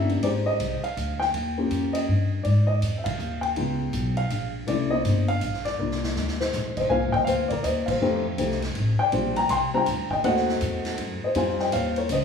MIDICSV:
0, 0, Header, 1, 5, 480
1, 0, Start_track
1, 0, Tempo, 370828
1, 296, Time_signature, 3, 2, 24, 8
1, 15851, End_track
2, 0, Start_track
2, 0, Title_t, "Upright piano"
2, 0, Program_c, 0, 0
2, 0, Note_on_c, 0, 58, 59
2, 0, Note_on_c, 0, 61, 54
2, 0, Note_on_c, 0, 64, 56
2, 0, Note_on_c, 0, 67, 62
2, 293, Note_off_c, 0, 58, 0
2, 295, Note_off_c, 0, 61, 0
2, 295, Note_on_c, 0, 56, 59
2, 298, Note_off_c, 0, 64, 0
2, 299, Note_off_c, 0, 67, 0
2, 299, Note_on_c, 0, 74, 88
2, 302, Note_on_c, 0, 60, 57
2, 309, Note_on_c, 0, 63, 55
2, 318, Note_on_c, 0, 67, 67
2, 369, Note_off_c, 0, 74, 0
2, 598, Note_on_c, 0, 75, 100
2, 1024, Note_off_c, 0, 56, 0
2, 1027, Note_off_c, 0, 60, 0
2, 1031, Note_off_c, 0, 63, 0
2, 1035, Note_off_c, 0, 67, 0
2, 1083, Note_on_c, 0, 77, 88
2, 1097, Note_off_c, 0, 75, 0
2, 1547, Note_on_c, 0, 79, 105
2, 1580, Note_off_c, 0, 77, 0
2, 2041, Note_on_c, 0, 58, 58
2, 2044, Note_on_c, 0, 61, 58
2, 2050, Note_on_c, 0, 65, 54
2, 2058, Note_on_c, 0, 67, 67
2, 2466, Note_off_c, 0, 79, 0
2, 2501, Note_on_c, 0, 75, 88
2, 2661, Note_off_c, 0, 58, 0
2, 2662, Note_off_c, 0, 61, 0
2, 2666, Note_off_c, 0, 65, 0
2, 2669, Note_off_c, 0, 67, 0
2, 2960, Note_off_c, 0, 75, 0
2, 3150, Note_on_c, 0, 74, 83
2, 3451, Note_off_c, 0, 74, 0
2, 3455, Note_on_c, 0, 75, 90
2, 3808, Note_off_c, 0, 75, 0
2, 3851, Note_on_c, 0, 76, 65
2, 3935, Note_on_c, 0, 77, 83
2, 3968, Note_off_c, 0, 76, 0
2, 4397, Note_off_c, 0, 77, 0
2, 4418, Note_on_c, 0, 79, 96
2, 4602, Note_on_c, 0, 56, 51
2, 4606, Note_on_c, 0, 59, 47
2, 4615, Note_on_c, 0, 63, 47
2, 4617, Note_on_c, 0, 65, 59
2, 5338, Note_off_c, 0, 56, 0
2, 5340, Note_off_c, 0, 59, 0
2, 5345, Note_off_c, 0, 63, 0
2, 5345, Note_off_c, 0, 65, 0
2, 5399, Note_on_c, 0, 77, 90
2, 5422, Note_off_c, 0, 79, 0
2, 5850, Note_off_c, 0, 77, 0
2, 6044, Note_on_c, 0, 57, 55
2, 6047, Note_on_c, 0, 61, 47
2, 6057, Note_on_c, 0, 62, 50
2, 6058, Note_on_c, 0, 74, 91
2, 6061, Note_on_c, 0, 64, 63
2, 6330, Note_off_c, 0, 57, 0
2, 6332, Note_off_c, 0, 61, 0
2, 6336, Note_off_c, 0, 62, 0
2, 6338, Note_off_c, 0, 64, 0
2, 6346, Note_off_c, 0, 74, 0
2, 6349, Note_on_c, 0, 75, 101
2, 6359, Note_on_c, 0, 58, 49
2, 6366, Note_on_c, 0, 60, 48
2, 6371, Note_on_c, 0, 63, 46
2, 6380, Note_on_c, 0, 65, 53
2, 6782, Note_off_c, 0, 58, 0
2, 6786, Note_off_c, 0, 60, 0
2, 6788, Note_off_c, 0, 63, 0
2, 6792, Note_off_c, 0, 65, 0
2, 6840, Note_on_c, 0, 77, 100
2, 6853, Note_off_c, 0, 75, 0
2, 7290, Note_off_c, 0, 77, 0
2, 7314, Note_on_c, 0, 74, 94
2, 7496, Note_on_c, 0, 58, 53
2, 7507, Note_on_c, 0, 62, 55
2, 7509, Note_on_c, 0, 63, 49
2, 7512, Note_on_c, 0, 65, 60
2, 8225, Note_off_c, 0, 58, 0
2, 8229, Note_off_c, 0, 74, 0
2, 8230, Note_off_c, 0, 62, 0
2, 8231, Note_off_c, 0, 63, 0
2, 8233, Note_off_c, 0, 65, 0
2, 8287, Note_on_c, 0, 72, 63
2, 8733, Note_off_c, 0, 72, 0
2, 8762, Note_on_c, 0, 75, 73
2, 8795, Note_on_c, 0, 72, 58
2, 8925, Note_on_c, 0, 80, 106
2, 8933, Note_on_c, 0, 58, 62
2, 8936, Note_on_c, 0, 60, 60
2, 8940, Note_on_c, 0, 63, 55
2, 8941, Note_off_c, 0, 72, 0
2, 8941, Note_off_c, 0, 75, 0
2, 8946, Note_on_c, 0, 65, 63
2, 8952, Note_on_c, 0, 77, 85
2, 9221, Note_on_c, 0, 79, 104
2, 9233, Note_off_c, 0, 77, 0
2, 9250, Note_off_c, 0, 80, 0
2, 9265, Note_on_c, 0, 75, 75
2, 9286, Note_off_c, 0, 79, 0
2, 9330, Note_off_c, 0, 75, 0
2, 9379, Note_on_c, 0, 77, 95
2, 9418, Note_on_c, 0, 72, 69
2, 9662, Note_off_c, 0, 58, 0
2, 9664, Note_off_c, 0, 60, 0
2, 9666, Note_off_c, 0, 63, 0
2, 9669, Note_off_c, 0, 65, 0
2, 9687, Note_on_c, 0, 74, 80
2, 9705, Note_off_c, 0, 72, 0
2, 9717, Note_off_c, 0, 77, 0
2, 9734, Note_on_c, 0, 70, 68
2, 9882, Note_on_c, 0, 75, 82
2, 9883, Note_off_c, 0, 74, 0
2, 9889, Note_off_c, 0, 70, 0
2, 9923, Note_on_c, 0, 72, 60
2, 10175, Note_on_c, 0, 77, 77
2, 10199, Note_off_c, 0, 72, 0
2, 10208, Note_off_c, 0, 75, 0
2, 10229, Note_on_c, 0, 72, 60
2, 10374, Note_on_c, 0, 57, 66
2, 10378, Note_on_c, 0, 60, 61
2, 10386, Note_on_c, 0, 67, 77
2, 10388, Note_on_c, 0, 63, 61
2, 10654, Note_off_c, 0, 57, 0
2, 10656, Note_off_c, 0, 60, 0
2, 10660, Note_off_c, 0, 67, 0
2, 10661, Note_off_c, 0, 63, 0
2, 10846, Note_on_c, 0, 57, 57
2, 10851, Note_on_c, 0, 60, 53
2, 10858, Note_on_c, 0, 63, 53
2, 10862, Note_on_c, 0, 67, 66
2, 11098, Note_off_c, 0, 77, 0
2, 11125, Note_off_c, 0, 72, 0
2, 11130, Note_off_c, 0, 57, 0
2, 11132, Note_off_c, 0, 60, 0
2, 11135, Note_off_c, 0, 63, 0
2, 11137, Note_off_c, 0, 67, 0
2, 11639, Note_on_c, 0, 79, 106
2, 11675, Note_on_c, 0, 74, 68
2, 11815, Note_on_c, 0, 55, 62
2, 11815, Note_on_c, 0, 60, 52
2, 11825, Note_on_c, 0, 62, 54
2, 11832, Note_on_c, 0, 65, 64
2, 12088, Note_off_c, 0, 79, 0
2, 12094, Note_off_c, 0, 55, 0
2, 12094, Note_off_c, 0, 60, 0
2, 12099, Note_off_c, 0, 62, 0
2, 12102, Note_off_c, 0, 65, 0
2, 12107, Note_off_c, 0, 74, 0
2, 12123, Note_on_c, 0, 82, 105
2, 12154, Note_on_c, 0, 79, 75
2, 12282, Note_off_c, 0, 82, 0
2, 12299, Note_off_c, 0, 79, 0
2, 12302, Note_on_c, 0, 84, 97
2, 12331, Note_on_c, 0, 79, 88
2, 12371, Note_off_c, 0, 84, 0
2, 12396, Note_off_c, 0, 79, 0
2, 12602, Note_on_c, 0, 55, 70
2, 12610, Note_on_c, 0, 60, 62
2, 12611, Note_on_c, 0, 82, 101
2, 12613, Note_on_c, 0, 62, 64
2, 12622, Note_on_c, 0, 65, 75
2, 12649, Note_on_c, 0, 79, 88
2, 12757, Note_off_c, 0, 55, 0
2, 12761, Note_off_c, 0, 60, 0
2, 12762, Note_off_c, 0, 62, 0
2, 12767, Note_off_c, 0, 65, 0
2, 13054, Note_off_c, 0, 82, 0
2, 13065, Note_off_c, 0, 79, 0
2, 13084, Note_on_c, 0, 79, 91
2, 13112, Note_on_c, 0, 75, 73
2, 13243, Note_off_c, 0, 79, 0
2, 13255, Note_on_c, 0, 57, 64
2, 13255, Note_on_c, 0, 60, 55
2, 13258, Note_off_c, 0, 75, 0
2, 13263, Note_on_c, 0, 78, 100
2, 13266, Note_on_c, 0, 63, 60
2, 13268, Note_on_c, 0, 66, 65
2, 13294, Note_on_c, 0, 75, 79
2, 14167, Note_off_c, 0, 78, 0
2, 14182, Note_off_c, 0, 75, 0
2, 14552, Note_on_c, 0, 75, 77
2, 14571, Note_on_c, 0, 72, 60
2, 14592, Note_off_c, 0, 57, 0
2, 14592, Note_off_c, 0, 60, 0
2, 14597, Note_off_c, 0, 63, 0
2, 14599, Note_off_c, 0, 66, 0
2, 14695, Note_on_c, 0, 55, 65
2, 14703, Note_on_c, 0, 60, 64
2, 14707, Note_on_c, 0, 63, 60
2, 14708, Note_off_c, 0, 72, 0
2, 14710, Note_on_c, 0, 65, 74
2, 14713, Note_off_c, 0, 75, 0
2, 14719, Note_on_c, 0, 80, 93
2, 14732, Note_on_c, 0, 77, 76
2, 14786, Note_off_c, 0, 80, 0
2, 14797, Note_off_c, 0, 77, 0
2, 15022, Note_on_c, 0, 79, 84
2, 15037, Note_on_c, 0, 75, 65
2, 15172, Note_off_c, 0, 79, 0
2, 15180, Note_off_c, 0, 75, 0
2, 15186, Note_on_c, 0, 77, 92
2, 15200, Note_on_c, 0, 73, 66
2, 15475, Note_off_c, 0, 73, 0
2, 15499, Note_off_c, 0, 77, 0
2, 15505, Note_on_c, 0, 73, 80
2, 15520, Note_on_c, 0, 70, 57
2, 15661, Note_off_c, 0, 70, 0
2, 15669, Note_off_c, 0, 73, 0
2, 15693, Note_on_c, 0, 75, 83
2, 15699, Note_on_c, 0, 72, 64
2, 15851, Note_off_c, 0, 55, 0
2, 15851, Note_off_c, 0, 60, 0
2, 15851, Note_off_c, 0, 63, 0
2, 15851, Note_off_c, 0, 65, 0
2, 15851, Note_off_c, 0, 72, 0
2, 15851, Note_off_c, 0, 75, 0
2, 15851, End_track
3, 0, Start_track
3, 0, Title_t, "Upright bass"
3, 0, Program_c, 1, 32
3, 0, Note_on_c, 1, 31, 81
3, 278, Note_off_c, 1, 31, 0
3, 293, Note_on_c, 1, 32, 74
3, 761, Note_off_c, 1, 32, 0
3, 777, Note_on_c, 1, 36, 82
3, 1065, Note_off_c, 1, 36, 0
3, 1253, Note_on_c, 1, 38, 86
3, 1721, Note_off_c, 1, 38, 0
3, 1735, Note_on_c, 1, 39, 80
3, 2202, Note_off_c, 1, 39, 0
3, 2211, Note_on_c, 1, 41, 73
3, 2680, Note_off_c, 1, 41, 0
3, 2696, Note_on_c, 1, 43, 76
3, 3163, Note_off_c, 1, 43, 0
3, 3170, Note_on_c, 1, 44, 77
3, 3640, Note_off_c, 1, 44, 0
3, 3652, Note_on_c, 1, 41, 78
3, 4121, Note_off_c, 1, 41, 0
3, 4132, Note_on_c, 1, 39, 80
3, 4601, Note_off_c, 1, 39, 0
3, 4610, Note_on_c, 1, 37, 88
3, 5080, Note_off_c, 1, 37, 0
3, 5087, Note_on_c, 1, 35, 89
3, 5558, Note_off_c, 1, 35, 0
3, 5570, Note_on_c, 1, 34, 86
3, 6040, Note_off_c, 1, 34, 0
3, 6052, Note_on_c, 1, 36, 90
3, 6521, Note_off_c, 1, 36, 0
3, 6533, Note_on_c, 1, 31, 83
3, 7001, Note_off_c, 1, 31, 0
3, 7014, Note_on_c, 1, 34, 73
3, 7482, Note_off_c, 1, 34, 0
3, 7495, Note_on_c, 1, 36, 84
3, 7962, Note_off_c, 1, 36, 0
3, 7978, Note_on_c, 1, 38, 73
3, 8444, Note_off_c, 1, 38, 0
3, 8453, Note_on_c, 1, 34, 82
3, 8921, Note_off_c, 1, 34, 0
3, 8931, Note_on_c, 1, 36, 91
3, 9093, Note_on_c, 1, 32, 60
3, 9113, Note_off_c, 1, 36, 0
3, 9250, Note_off_c, 1, 32, 0
3, 9257, Note_on_c, 1, 29, 65
3, 9406, Note_off_c, 1, 29, 0
3, 9414, Note_on_c, 1, 38, 90
3, 9881, Note_off_c, 1, 38, 0
3, 9891, Note_on_c, 1, 39, 74
3, 10359, Note_off_c, 1, 39, 0
3, 10367, Note_on_c, 1, 41, 82
3, 10837, Note_off_c, 1, 41, 0
3, 10846, Note_on_c, 1, 36, 84
3, 11316, Note_off_c, 1, 36, 0
3, 11331, Note_on_c, 1, 33, 84
3, 11621, Note_off_c, 1, 33, 0
3, 11810, Note_on_c, 1, 34, 98
3, 12278, Note_off_c, 1, 34, 0
3, 12286, Note_on_c, 1, 36, 90
3, 12756, Note_off_c, 1, 36, 0
3, 12770, Note_on_c, 1, 38, 76
3, 13238, Note_off_c, 1, 38, 0
3, 13253, Note_on_c, 1, 39, 88
3, 13719, Note_off_c, 1, 39, 0
3, 13734, Note_on_c, 1, 40, 90
3, 14200, Note_off_c, 1, 40, 0
3, 14214, Note_on_c, 1, 42, 80
3, 14502, Note_off_c, 1, 42, 0
3, 14694, Note_on_c, 1, 41, 84
3, 15159, Note_off_c, 1, 41, 0
3, 15175, Note_on_c, 1, 39, 92
3, 15640, Note_off_c, 1, 39, 0
3, 15657, Note_on_c, 1, 37, 89
3, 15851, Note_off_c, 1, 37, 0
3, 15851, End_track
4, 0, Start_track
4, 0, Title_t, "Muted upright bass strokes"
4, 1072, Note_on_c, 9, 29, 40
4, 1202, Note_off_c, 9, 29, 0
4, 11633, Note_on_c, 9, 29, 36
4, 11762, Note_off_c, 9, 29, 0
4, 14533, Note_on_c, 9, 29, 35
4, 14663, Note_off_c, 9, 29, 0
4, 15851, End_track
5, 0, Start_track
5, 0, Title_t, "Drums"
5, 122, Note_on_c, 9, 51, 37
5, 252, Note_off_c, 9, 51, 0
5, 293, Note_on_c, 9, 51, 57
5, 297, Note_on_c, 9, 36, 18
5, 422, Note_off_c, 9, 51, 0
5, 426, Note_off_c, 9, 36, 0
5, 773, Note_on_c, 9, 44, 46
5, 773, Note_on_c, 9, 51, 58
5, 777, Note_on_c, 9, 36, 19
5, 903, Note_off_c, 9, 44, 0
5, 903, Note_off_c, 9, 51, 0
5, 907, Note_off_c, 9, 36, 0
5, 1086, Note_on_c, 9, 51, 41
5, 1216, Note_off_c, 9, 51, 0
5, 1257, Note_on_c, 9, 36, 24
5, 1258, Note_on_c, 9, 44, 44
5, 1258, Note_on_c, 9, 51, 47
5, 1386, Note_off_c, 9, 36, 0
5, 1387, Note_off_c, 9, 44, 0
5, 1387, Note_off_c, 9, 51, 0
5, 1568, Note_on_c, 9, 38, 30
5, 1697, Note_off_c, 9, 38, 0
5, 1732, Note_on_c, 9, 51, 57
5, 1734, Note_on_c, 9, 36, 15
5, 1861, Note_off_c, 9, 51, 0
5, 1863, Note_off_c, 9, 36, 0
5, 2209, Note_on_c, 9, 44, 44
5, 2209, Note_on_c, 9, 51, 52
5, 2213, Note_on_c, 9, 36, 18
5, 2338, Note_off_c, 9, 44, 0
5, 2338, Note_off_c, 9, 51, 0
5, 2343, Note_off_c, 9, 36, 0
5, 2520, Note_on_c, 9, 51, 63
5, 2649, Note_off_c, 9, 51, 0
5, 2694, Note_on_c, 9, 36, 17
5, 2823, Note_off_c, 9, 36, 0
5, 3165, Note_on_c, 9, 51, 49
5, 3172, Note_on_c, 9, 36, 22
5, 3295, Note_off_c, 9, 51, 0
5, 3301, Note_off_c, 9, 36, 0
5, 3650, Note_on_c, 9, 44, 53
5, 3650, Note_on_c, 9, 51, 57
5, 3653, Note_on_c, 9, 36, 18
5, 3779, Note_off_c, 9, 44, 0
5, 3779, Note_off_c, 9, 51, 0
5, 3782, Note_off_c, 9, 36, 0
5, 3957, Note_on_c, 9, 51, 70
5, 3963, Note_on_c, 9, 36, 69
5, 4086, Note_off_c, 9, 51, 0
5, 4092, Note_off_c, 9, 36, 0
5, 4131, Note_on_c, 9, 44, 40
5, 4261, Note_off_c, 9, 44, 0
5, 4438, Note_on_c, 9, 51, 38
5, 4568, Note_off_c, 9, 51, 0
5, 4609, Note_on_c, 9, 51, 50
5, 4612, Note_on_c, 9, 36, 23
5, 4739, Note_off_c, 9, 51, 0
5, 4741, Note_off_c, 9, 36, 0
5, 5086, Note_on_c, 9, 44, 51
5, 5086, Note_on_c, 9, 51, 51
5, 5092, Note_on_c, 9, 36, 18
5, 5215, Note_off_c, 9, 44, 0
5, 5215, Note_off_c, 9, 51, 0
5, 5221, Note_off_c, 9, 36, 0
5, 5394, Note_on_c, 9, 51, 42
5, 5524, Note_off_c, 9, 51, 0
5, 5570, Note_on_c, 9, 44, 49
5, 5570, Note_on_c, 9, 51, 52
5, 5574, Note_on_c, 9, 36, 19
5, 5699, Note_off_c, 9, 44, 0
5, 5699, Note_off_c, 9, 51, 0
5, 5703, Note_off_c, 9, 36, 0
5, 6051, Note_on_c, 9, 51, 55
5, 6054, Note_on_c, 9, 36, 17
5, 6181, Note_off_c, 9, 51, 0
5, 6183, Note_off_c, 9, 36, 0
5, 6533, Note_on_c, 9, 44, 62
5, 6533, Note_on_c, 9, 51, 54
5, 6534, Note_on_c, 9, 36, 19
5, 6663, Note_off_c, 9, 36, 0
5, 6663, Note_off_c, 9, 44, 0
5, 6663, Note_off_c, 9, 51, 0
5, 6837, Note_on_c, 9, 51, 42
5, 6967, Note_off_c, 9, 51, 0
5, 7004, Note_on_c, 9, 44, 49
5, 7004, Note_on_c, 9, 51, 53
5, 7013, Note_on_c, 9, 36, 18
5, 7134, Note_off_c, 9, 44, 0
5, 7134, Note_off_c, 9, 51, 0
5, 7143, Note_off_c, 9, 36, 0
5, 7171, Note_on_c, 9, 38, 29
5, 7301, Note_off_c, 9, 38, 0
5, 7317, Note_on_c, 9, 51, 39
5, 7333, Note_on_c, 9, 38, 33
5, 7447, Note_off_c, 9, 51, 0
5, 7463, Note_off_c, 9, 38, 0
5, 7655, Note_on_c, 9, 38, 41
5, 7784, Note_off_c, 9, 38, 0
5, 7815, Note_on_c, 9, 38, 61
5, 7944, Note_off_c, 9, 38, 0
5, 7972, Note_on_c, 9, 38, 56
5, 8101, Note_off_c, 9, 38, 0
5, 8129, Note_on_c, 9, 38, 53
5, 8258, Note_off_c, 9, 38, 0
5, 8289, Note_on_c, 9, 38, 72
5, 8419, Note_off_c, 9, 38, 0
5, 8446, Note_on_c, 9, 44, 50
5, 8450, Note_on_c, 9, 38, 45
5, 8576, Note_off_c, 9, 44, 0
5, 8580, Note_off_c, 9, 38, 0
5, 8760, Note_on_c, 9, 49, 55
5, 8763, Note_on_c, 9, 36, 61
5, 8889, Note_off_c, 9, 49, 0
5, 8892, Note_off_c, 9, 36, 0
5, 8933, Note_on_c, 9, 36, 20
5, 9063, Note_off_c, 9, 36, 0
5, 9242, Note_on_c, 9, 36, 60
5, 9371, Note_off_c, 9, 36, 0
5, 9409, Note_on_c, 9, 44, 53
5, 9409, Note_on_c, 9, 51, 61
5, 9413, Note_on_c, 9, 36, 20
5, 9538, Note_off_c, 9, 44, 0
5, 9538, Note_off_c, 9, 51, 0
5, 9542, Note_off_c, 9, 36, 0
5, 9713, Note_on_c, 9, 51, 46
5, 9720, Note_on_c, 9, 36, 53
5, 9842, Note_off_c, 9, 51, 0
5, 9850, Note_off_c, 9, 36, 0
5, 9888, Note_on_c, 9, 44, 58
5, 9888, Note_on_c, 9, 51, 63
5, 9891, Note_on_c, 9, 36, 18
5, 10018, Note_off_c, 9, 44, 0
5, 10018, Note_off_c, 9, 51, 0
5, 10021, Note_off_c, 9, 36, 0
5, 10199, Note_on_c, 9, 49, 69
5, 10200, Note_on_c, 9, 36, 78
5, 10329, Note_off_c, 9, 49, 0
5, 10330, Note_off_c, 9, 36, 0
5, 10848, Note_on_c, 9, 44, 53
5, 10848, Note_on_c, 9, 51, 65
5, 10849, Note_on_c, 9, 36, 21
5, 10978, Note_off_c, 9, 44, 0
5, 10978, Note_off_c, 9, 51, 0
5, 10979, Note_off_c, 9, 36, 0
5, 11014, Note_on_c, 9, 38, 31
5, 11143, Note_off_c, 9, 38, 0
5, 11160, Note_on_c, 9, 51, 48
5, 11171, Note_on_c, 9, 38, 46
5, 11290, Note_off_c, 9, 51, 0
5, 11301, Note_off_c, 9, 38, 0
5, 11325, Note_on_c, 9, 51, 54
5, 11329, Note_on_c, 9, 36, 21
5, 11455, Note_off_c, 9, 51, 0
5, 11458, Note_off_c, 9, 36, 0
5, 11805, Note_on_c, 9, 51, 58
5, 11809, Note_on_c, 9, 36, 22
5, 11935, Note_off_c, 9, 51, 0
5, 11938, Note_off_c, 9, 36, 0
5, 12118, Note_on_c, 9, 51, 49
5, 12247, Note_off_c, 9, 51, 0
5, 12285, Note_on_c, 9, 44, 52
5, 12285, Note_on_c, 9, 51, 67
5, 12289, Note_on_c, 9, 36, 24
5, 12414, Note_off_c, 9, 44, 0
5, 12414, Note_off_c, 9, 51, 0
5, 12418, Note_off_c, 9, 36, 0
5, 12765, Note_on_c, 9, 44, 56
5, 12765, Note_on_c, 9, 51, 59
5, 12771, Note_on_c, 9, 36, 25
5, 12894, Note_off_c, 9, 44, 0
5, 12894, Note_off_c, 9, 51, 0
5, 12900, Note_off_c, 9, 36, 0
5, 13080, Note_on_c, 9, 36, 51
5, 13210, Note_off_c, 9, 36, 0
5, 13254, Note_on_c, 9, 36, 20
5, 13254, Note_on_c, 9, 51, 60
5, 13383, Note_off_c, 9, 36, 0
5, 13384, Note_off_c, 9, 51, 0
5, 13416, Note_on_c, 9, 38, 28
5, 13546, Note_off_c, 9, 38, 0
5, 13577, Note_on_c, 9, 38, 41
5, 13706, Note_off_c, 9, 38, 0
5, 13730, Note_on_c, 9, 44, 52
5, 13730, Note_on_c, 9, 51, 64
5, 13734, Note_on_c, 9, 36, 25
5, 13859, Note_off_c, 9, 44, 0
5, 13859, Note_off_c, 9, 51, 0
5, 13863, Note_off_c, 9, 36, 0
5, 14042, Note_on_c, 9, 51, 46
5, 14046, Note_on_c, 9, 38, 52
5, 14171, Note_off_c, 9, 51, 0
5, 14175, Note_off_c, 9, 38, 0
5, 14208, Note_on_c, 9, 51, 59
5, 14215, Note_on_c, 9, 36, 19
5, 14338, Note_off_c, 9, 51, 0
5, 14344, Note_off_c, 9, 36, 0
5, 14688, Note_on_c, 9, 51, 63
5, 14696, Note_on_c, 9, 36, 29
5, 14818, Note_off_c, 9, 51, 0
5, 14825, Note_off_c, 9, 36, 0
5, 15009, Note_on_c, 9, 38, 37
5, 15138, Note_off_c, 9, 38, 0
5, 15171, Note_on_c, 9, 44, 52
5, 15171, Note_on_c, 9, 51, 69
5, 15176, Note_on_c, 9, 36, 24
5, 15301, Note_off_c, 9, 44, 0
5, 15301, Note_off_c, 9, 51, 0
5, 15305, Note_off_c, 9, 36, 0
5, 15481, Note_on_c, 9, 51, 44
5, 15610, Note_off_c, 9, 51, 0
5, 15650, Note_on_c, 9, 44, 58
5, 15650, Note_on_c, 9, 51, 69
5, 15656, Note_on_c, 9, 36, 17
5, 15779, Note_off_c, 9, 44, 0
5, 15779, Note_off_c, 9, 51, 0
5, 15786, Note_off_c, 9, 36, 0
5, 15851, End_track
0, 0, End_of_file